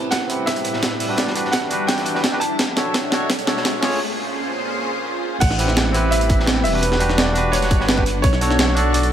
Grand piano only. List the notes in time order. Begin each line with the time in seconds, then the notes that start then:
0.11 F#5
0.46 E5
1.16 D5
1.52 F#5
1.87 G5
2.40 A5
5.40 F#5
6.11 E5
6.64 E5
6.81 B4
7.17 D5
7.52 C#5
7.87 B4
8.22 C#5
8.93 D5